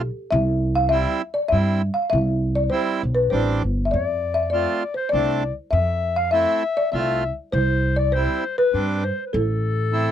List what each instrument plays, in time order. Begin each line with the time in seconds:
Already playing: marimba A4
0.31 upright bass C2, marimba E5
0.75 marimba F5
0.89 accordion G3 C4 E4, marimba E5
1.34 marimba D5
1.49 upright bass G2, accordion G3 C4 E4, marimba E5
1.94 marimba F5
2.10 upright bass C2, marimba E5
2.55 marimba D5
2.70 accordion G3 C4 E4, marimba C5
3.03 upright bass B1
3.15 marimba B4
3.30 upright bass A1, accordion G3 C4 D4, marimba C5
3.63 upright bass G1
3.85 marimba E5
3.91 upright bass F2, marimba D5, clarinet D5
4.34 marimba E5
4.50 accordion A3 C4, marimba D5, clarinet D5
4.54 accordion F4
4.94 marimba C5, clarinet C5
5.09 upright bass C2, accordion A3, marimba D5, clarinet D5
5.13 accordion C4 D4
5.71 upright bass F2, marimba E5, clarinet E5
6.16 marimba F5, clarinet F5
6.31 accordion A3 C4 E4, marimba E5, clarinet E5
6.77 marimba D5
6.92 upright bass C2, accordion A3 C4 F4, marimba E5, clarinet E5
7.52 upright bass C2, marimba C5, clarinet C5
7.96 marimba D5, clarinet D5
8.12 accordion G3 C4 E4, marimba C5, clarinet C5
8.58 marimba B4, clarinet B4
8.73 upright bass G2, accordion G3 C4 D4
9.03 clarinet C5, marimba C5
9.26 clarinet B4
9.33 upright bass A1, marimba A4, clarinet A4
9.92 accordion A3 C4 E4